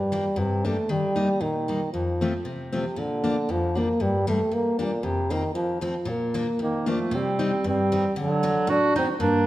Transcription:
Already playing: steel-string acoustic guitar G2, euphonium G3
0.12 steel-string acoustic guitar G3 A#3 D4
0.36 steel-string acoustic guitar G2, euphonium C3
0.65 steel-string acoustic guitar G3 A#3 D4, euphonium A3
0.89 steel-string acoustic guitar D#3, euphonium G3
1.16 steel-string acoustic guitar G3 A#3 D#4
1.41 steel-string acoustic guitar A#2, euphonium D#3
1.68 steel-string acoustic guitar G3 A#3 D#4
1.93 steel-string acoustic guitar F2, euphonium F3
2.21 steel-string acoustic guitar F3 A3 C4
2.45 steel-string acoustic guitar C3
2.72 euphonium C3, steel-string acoustic guitar F3 A3 C4
2.96 steel-string acoustic guitar A#2, euphonium D3
3.24 steel-string acoustic guitar F3 A#3 D4
3.49 steel-string acoustic guitar F2, euphonium F3
3.75 steel-string acoustic guitar F3 A#3 D4, euphonium A#3
4.00 steel-string acoustic guitar G2, euphonium G3
4.27 steel-string acoustic guitar G3 A#3 D4, euphonium A3
4.51 steel-string acoustic guitar G2, euphonium A#3
4.79 euphonium A#2, steel-string acoustic guitar G3 A#3 D4
5.03 steel-string acoustic guitar F2, euphonium C3
5.30 euphonium D#3, steel-string acoustic guitar F3 A#3 C4
5.54 steel-string acoustic guitar F2, euphonium F3
5.81 euphonium F3, steel-string acoustic guitar F3 A3 C4
6.05 steel-string acoustic guitar A#2, euphonium A#3
6.34 steel-string acoustic guitar F3 A#3 D4
6.59 steel-string acoustic guitar F2, euphonium D#3, clarinet A#3
6.86 steel-string acoustic guitar F3 A#3 D4, euphonium F3, clarinet A3
7.11 steel-string acoustic guitar C3, clarinet C4
7.16 euphonium G3
7.39 steel-string acoustic guitar G3 C4 D#4
7.64 steel-string acoustic guitar G2, clarinet C4
7.68 euphonium G3
7.92 steel-string acoustic guitar G3 C4 D#4
8.16 steel-string acoustic guitar D3, clarinet F#3
8.21 euphonium D3
8.43 steel-string acoustic guitar F#3 A3 D4
8.67 steel-string acoustic guitar A2, euphonium D4, clarinet F#4
8.95 steel-string acoustic guitar F#3 A3 D4, euphonium C4, clarinet D#4
9.20 steel-string acoustic guitar G2, euphonium A#3, clarinet D4

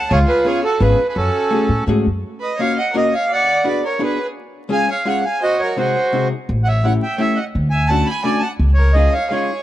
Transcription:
Already playing: accordion A5
0.10 upright bass C#2, accordion F4 C#5, violin G#4
0.27 violin G#4, accordion B4
0.45 hollow-body jazz guitar B3 C#4 F4 G#4, violin G#4, accordion C#5
0.64 violin F#4, accordion A4
0.80 upright bass G#1, hollow-body jazz guitar B3 C#4 F4 G#4, violin G#4, accordion B4
1.09 violin G#4, accordion B4
1.16 upright bass F#2, accordion C#4 A4, violin F#4
1.51 hollow-body jazz guitar A3 C#4 F#4 G#4
1.69 upright bass A2
1.87 upright bass G#2, hollow-body jazz guitar A3 C#4 F#4 G#4
2.06 upright bass F#2
2.40 violin B4, accordion D#5
2.57 hollow-body jazz guitar A#3 C#4 F4 F#4, violin C#5, accordion F5
2.76 violin D#5, accordion F#5
2.93 hollow-body jazz guitar A#3 C#4 F4 F#4, violin A#4
2.97 accordion D#5
3.11 violin C#5, accordion F5
3.30 violin D5, accordion D5 F#5
3.64 hollow-body jazz guitar B3 D4 F#4 G#4, violin B4, accordion D5
3.84 violin A#4, accordion C#5
3.99 hollow-body jazz guitar B3 D4 F#4 G#4, violin G#4
4.04 accordion B4
4.69 hollow-body jazz guitar G#3 C#4 F4 G#4, violin F5, accordion G#5
4.90 violin C#5, accordion F5
5.05 hollow-body jazz guitar G#3 C#4 F4 G#4, violin C#5, accordion F#5
5.23 violin F5, accordion G#5
5.41 accordion F#4 D#5, violin C5
5.60 violin A#4, accordion C#5
5.76 hollow-body jazz guitar C3 G#3 C4 D#4 F#4, accordion F#4 C5, violin G#4
6.12 hollow-body jazz guitar C3 G#3 C4 D#4 F#4
6.49 upright bass A1
6.64 violin C#5 D#5, accordion E5 F#5
6.84 hollow-body jazz guitar A3 C#4 E4 G4, violin C#5, accordion F#5
7.03 violin E5, accordion G5
7.18 hollow-body jazz guitar A3 C#4 E4 G4, violin C#5, accordion E5
7.35 violin D#5, accordion F#5
7.55 upright bass D2
7.70 violin E5, accordion G#5
7.88 hollow-body jazz guitar A3 C#4 D4 F#4, violin F#5, accordion A5
8.05 violin G#5, accordion B5
8.22 hollow-body jazz guitar A3 C#4 D4 F#4, violin D5, accordion G#5
8.39 violin F#5, accordion A5
8.59 upright bass C#2
8.74 violin A#4, accordion C#5
8.93 hollow-body jazz guitar G#3 C#4 D#4 F4, violin G#4, accordion D#5
9.12 violin C#5, accordion F5
9.31 hollow-body jazz guitar G#3 C#4 D#4 F4, violin G#4, accordion C#5

